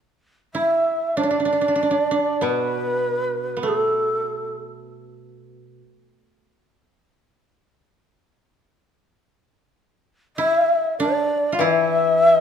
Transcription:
0.54 E4 E5
1.17 D4 C#5
1.23 D4
1.28 D4 D5
1.40 D4
1.45 D4
1.53 D4
1.61 D4
1.68 D4
1.76 D4
1.83 D4
1.91 D4
2.11 D4
2.41 B2 B3 B4
3.57 B3
3.63 A3
3.68 A4
10.36 E4 E5
10.98 D4 D5
11.52 F4 F5
11.59 E3 E4 E5

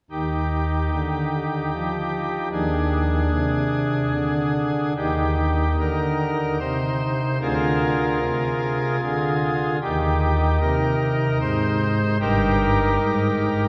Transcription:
0.10 D#2 D#3 D#4 G4
0.93 D3
1.73 F3
2.52 D#2 D#3 D4 G#4
3.32 C3
4.14 D3
4.97 D#2 D#3 D#4 G4
5.79 D3 A#4
6.60 C3 C5
7.41 D2 D3 F4 G#4 A#4
7.48 C5
7.54 A#4
8.21 C3
9.02 D3 G#4
9.82 D#2 D#3 D#4 G4
10.61 C3 A#4
11.41 G#2 C5
12.21 G1 G2 D#4 G4 A#4
13.01 G#2

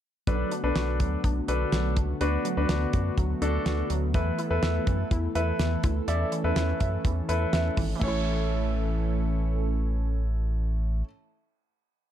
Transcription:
0.27 B1 D3 F#3 A3 B3 D4 F#4 A4 B4, kick, closed hi-hat
0.51 D4, closed hi-hat
0.64 B1 D4 A4 B4
0.75 B1 F#4, snare, closed hi-hat
1.00 D2 F#3, kick, closed hi-hat
1.24 B1 D4, kick, closed hi-hat
1.48 B1 D4 F#4 A4 B4, closed hi-hat
1.72 B1 F#3, snare, closed hi-hat
1.97 C#2 D4, kick, closed hi-hat
2.21 D2 D4 F#4 B4, closed hi-hat
2.45 F#3, closed hi-hat
2.57 D2 D4 F#4 B4
2.69 D2 D4, snare, closed hi-hat
2.93 F#2 F#4, kick, closed hi-hat
3.18 D2 F#3, kick, closed hi-hat
3.42 D2 D4 F#4 A4, closed hi-hat
3.66 D2 F#4, snare, closed hi-hat
3.90 D2 F#3, closed hi-hat
4.14 E2 E3 E4 A4 B4, kick, closed hi-hat
4.39 E4, closed hi-hat
4.50 E2 E4 A4 B4
4.63 E2 E5, snare, closed hi-hat
4.87 F#2 E3, kick, closed hi-hat
5.11 E2 E4, kick, closed hi-hat
5.35 E2 E4 A4 B4 E5, closed hi-hat
5.59 E2 E3, snare, closed hi-hat
5.84 D2 E4, kick, closed hi-hat
6.08 E2 C#4 E4 A4 D5 E5, closed hi-hat
6.32 E3, closed hi-hat
6.44 E2 E4 A4 B4
6.56 E2 E4, snare, closed hi-hat
6.80 F#2 E5, kick, closed hi-hat
7.05 E2 E3, kick, closed hi-hat
7.29 E2 E4 A4 B4, closed hi-hat
7.53 E2 E5, snare, closed hi-hat
7.77 G#1 E3, kick, open hi-hat
7.95 E3 A3 E4
8.01 A1 E3 A3 C#4 A4 C#5, kick, crash
8.08 E4

